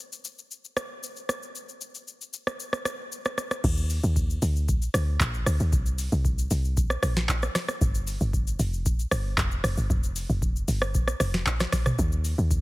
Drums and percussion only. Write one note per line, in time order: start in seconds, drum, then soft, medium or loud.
0.12 shaker medium
0.25 shaker medium
0.38 shaker medium
0.51 shaker medium
0.65 shaker medium
0.77 cross-stick loud
0.77 shaker loud
1.03 shaker medium
1.16 shaker soft
1.29 cross-stick medium
1.29 shaker medium
1.43 shaker soft
1.55 shaker medium
1.69 shaker medium
1.81 shaker medium
1.95 shaker soft
2.07 shaker medium
2.21 shaker medium
2.33 shaker medium
2.47 cross-stick medium
2.47 shaker soft
2.60 shaker medium
2.73 cross-stick medium
2.73 shaker medium
2.85 cross-stick loud
2.85 shaker loud
3.12 shaker medium
3.25 cross-stick medium
3.25 shaker soft
3.38 cross-stick medium
3.38 shaker medium
3.51 cross-stick medium
3.51 shaker soft
3.64 kick loud
3.64 crash loud
3.64 shaker medium
3.77 shaker medium
3.90 open hi-hat medium
3.90 shaker medium
4.03 shaker medium
4.16 kick medium
4.16 shaker medium
4.30 shaker medium
4.42 open hi-hat medium
4.42 shaker loud
4.56 shaker medium
4.68 kick loud
4.68 shaker medium
4.82 shaker medium
4.94 cross-stick loud
4.94 open hi-hat medium
4.94 shaker loud
5.20 kick loud
5.20 clap loud
5.20 shaker medium
5.34 shaker soft
5.46 cross-stick medium
5.46 open hi-hat medium
5.46 shaker medium
5.60 shaker medium
5.73 kick loud
5.73 shaker medium
5.86 shaker medium
5.98 open hi-hat medium
5.98 shaker loud
6.12 shaker medium
6.25 kick medium
6.25 shaker medium
6.39 shaker medium
6.51 open hi-hat medium
6.51 shaker loud
6.64 shaker medium
6.77 kick loud
6.77 shaker medium
6.90 cross-stick medium
6.90 shaker medium
7.03 cross-stick loud
7.03 open hi-hat medium
7.03 shaker loud
7.17 snare medium
7.29 kick loud
7.29 clap medium
7.29 shaker loud
7.42 cross-stick medium
7.42 shaker soft
7.55 cross-stick medium
7.55 snare medium
7.55 open hi-hat medium
7.55 shaker loud
7.68 cross-stick medium
7.68 shaker medium
7.81 kick loud
7.81 shaker medium
7.95 shaker medium
8.07 open hi-hat medium
8.07 shaker medium
8.21 shaker medium
8.33 kick loud
8.33 shaker medium
8.47 shaker medium
8.59 open hi-hat medium
8.59 shaker loud
8.73 shaker medium
8.86 kick loud
8.86 shaker medium
8.99 shaker medium
9.11 cross-stick loud
9.11 open hi-hat medium
9.11 shaker loud
9.38 kick loud
9.38 clap loud
9.38 shaker medium
9.51 shaker soft
9.64 cross-stick medium
9.64 open hi-hat medium
9.64 shaker medium
9.77 shaker medium
9.90 kick loud
9.90 shaker medium
10.03 shaker medium
10.16 open hi-hat medium
10.16 shaker medium
10.29 shaker medium
10.42 kick medium
10.42 shaker medium
10.56 shaker medium
10.68 open hi-hat medium
10.68 shaker loud
10.82 cross-stick loud
10.82 shaker medium
10.94 kick loud
10.94 shaker medium
11.08 cross-stick medium
11.08 shaker medium
11.20 cross-stick loud
11.20 open hi-hat medium
11.20 shaker loud
11.34 snare medium
11.46 kick loud
11.46 clap loud
11.46 shaker medium
11.60 cross-stick medium
11.60 snare medium
11.60 shaker soft
11.72 kick loud
11.72 cross-stick medium
11.72 snare medium
11.72 open hi-hat medium
11.72 shaker medium
11.86 cross-stick medium
11.86 mid tom loud
11.86 shaker medium
11.99 kick loud
11.99 shaker medium
12.12 shaker medium
12.24 open hi-hat medium
12.24 shaker loud
12.38 shaker medium
12.51 kick medium
12.51 shaker medium